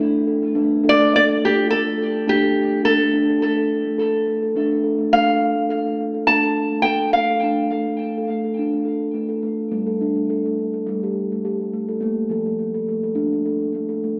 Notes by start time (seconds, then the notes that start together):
Already playing: D4 E4
0.00 A3
0.27 A4
0.43 A3
0.55 A3 D4
0.84 D4 A4
0.89 D5
0.99 A3
1.16 D5
1.27 A4
1.41 A3 G4
1.55 F4
1.70 A4
1.85 A3
1.98 A4
2.27 A3 D4 G4
2.43 A4
2.56 A3
2.84 D4 A4
3.01 A3
3.13 D4
3.29 A4
3.42 A3
3.57 A4
3.85 A3
3.98 A4
4.27 A3
4.42 A4
4.55 A3 D4
4.84 A4
4.99 A3
5.13 A3 D4 F5
5.28 A4
5.41 A3
5.56 A3
5.69 A4
5.86 A3
6.14 A4
6.27 A3 D4 A5
6.44 A4
6.71 A3
6.82 A4 G5
7.13 A3 F5
7.30 A4
7.43 A3 D4
7.72 A3 A4
7.88 A3
8.18 A4
8.30 A3
8.44 A4
8.59 D4
8.73 A3
8.85 A4
9.14 A3
9.29 A4
9.43 A3
9.72 G3 A3
9.87 A4
10.01 D4
10.16 A3
10.30 A4
10.46 A3
10.74 A4
10.86 G3 A3
11.03 G4
11.32 A3
11.45 G4
11.73 A3
11.88 A4
12.01 A3 A#3
12.29 F3 A4
12.46 A3
12.74 A4
12.88 A3
13.03 A4
13.15 D4
13.33 A3
13.45 A4
13.75 A3
13.89 A4
14.04 A3